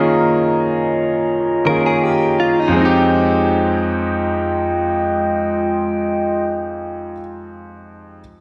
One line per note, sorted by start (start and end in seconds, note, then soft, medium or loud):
0.00 1.61 D#3 medium
0.00 1.62 A#3 medium
0.00 1.63 C#4 medium
0.00 1.64 F4 medium
0.00 2.72 F4 medium
0.00 1.65 G#4 medium
0.00 2.72 C#5 medium
0.00 2.72 D#5 medium
0.00 2.72 A#5 medium
1.65 2.75 D#3 medium
1.65 2.76 A#3 soft
1.65 2.76 C#4 soft
1.65 2.77 F4 soft
1.65 1.85 A#4 medium
1.69 2.78 G#4 medium
1.86 2.03 G#4 medium
2.03 2.38 G4 medium
2.40 2.59 F4 medium
2.59 2.94 D#4 medium
2.68 7.11 F2 medium
2.72 7.13 G#3 medium
2.76 6.45 G#3 medium
2.76 7.15 C4 medium
2.76 6.45 F4 medium
2.76 6.45 D#5 medium
2.76 6.45 G5 medium
2.81 7.17 D#4 medium
2.85 7.19 G4 medium